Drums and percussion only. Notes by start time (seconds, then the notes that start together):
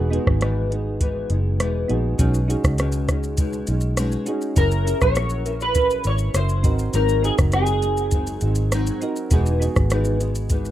0.13 closed hi-hat
0.27 kick, cross-stick
0.41 cross-stick, closed hi-hat
0.72 closed hi-hat
1.01 kick, closed hi-hat
1.30 closed hi-hat
1.60 cross-stick, closed hi-hat
1.89 closed hi-hat
2.19 kick, closed hi-hat, shaker
2.34 shaker
2.50 closed hi-hat, shaker
2.64 kick, cross-stick, shaker
2.78 cross-stick, closed hi-hat, shaker
2.92 shaker
3.08 kick, cross-stick, closed hi-hat, shaker
3.23 shaker
3.37 kick, closed hi-hat, shaker
3.53 shaker
3.67 closed hi-hat, shaker
3.81 shaker
3.97 cross-stick, closed hi-hat, shaker
4.12 shaker
4.26 closed hi-hat, shaker
4.41 shaker
4.56 kick, closed hi-hat, shaker
4.71 shaker
4.87 closed hi-hat, shaker
5.01 kick, cross-stick, shaker
5.15 cross-stick, closed hi-hat, shaker
5.30 shaker
5.46 closed hi-hat, shaker
5.61 shaker
5.75 kick, closed hi-hat, shaker
5.90 shaker
6.04 closed hi-hat, shaker
6.18 shaker
6.34 cross-stick, closed hi-hat, shaker
6.49 shaker
6.64 kick, closed hi-hat, shaker
6.79 shaker
6.93 closed hi-hat, shaker
7.09 shaker
7.24 closed hi-hat, shaker
7.38 kick, cross-stick, shaker
7.52 cross-stick, closed hi-hat, shaker
7.66 shaker
7.82 closed hi-hat, shaker
7.97 shaker
8.11 kick, closed hi-hat, shaker
8.27 shaker
8.41 closed hi-hat, shaker
8.55 shaker
8.72 cross-stick, closed hi-hat, shaker
8.87 shaker
9.02 closed hi-hat, shaker
9.16 shaker
9.31 kick, closed hi-hat, shaker
9.46 shaker
9.62 closed hi-hat, shaker
9.76 kick, cross-stick, shaker
9.90 cross-stick, closed hi-hat, shaker
10.04 shaker
10.21 closed hi-hat, shaker
10.35 shaker
10.50 kick, closed hi-hat, shaker
10.65 shaker